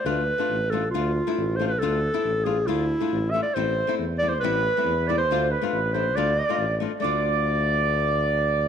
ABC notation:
X:1
M:2/4
L:1/16
Q:1/4=139
K:none
V:1 name="Accordion"
z8 | z8 | z8 | z8 |
c4 z2 d c | B6 d c- | c2 B2 B4 | d6 z2 |
d8- | d8 |]
V:2 name="Clarinet"
B6 A2 | F6 c B | A6 ^G2 | E6 e d |
c4 z2 d c | B6 d c- | c2 B4 c2 | d6 z2 |
d8- | d8 |]
V:3 name="Nylon-string guitar"
[A,DF]2 z [A,DF] z2 [A,DF] z | [A,DF]2 z [A,DE] z2 [A,DF] z | [A,DF]2 z [A,DE] z2 [A,DF] z | [A,DF]2 z [A,DF] z2 [A,DF] z |
[A,CE]2 z [A,CE] z2 [A,CE] z | [A,CE]2 z [A,CE] z2 [A,CE] z | [A,DF]2 z [A,DF] z2 [A,DE] z | [A,DF]2 z [A,DF] z2 [A,DF] z |
[A,DF]8- | [A,DF]8 |]
V:4 name="Tuba" clef=bass
D,,4 A,,,4 | D,,4 A,,,4 | D,,4 A,,,4 | D,,4 A,,,4 |
A,,,4 E,,4 | A,,,4 E,,4 | D,,4 A,,,4 | D,,4 A,,,4 |
D,,8- | D,,8 |]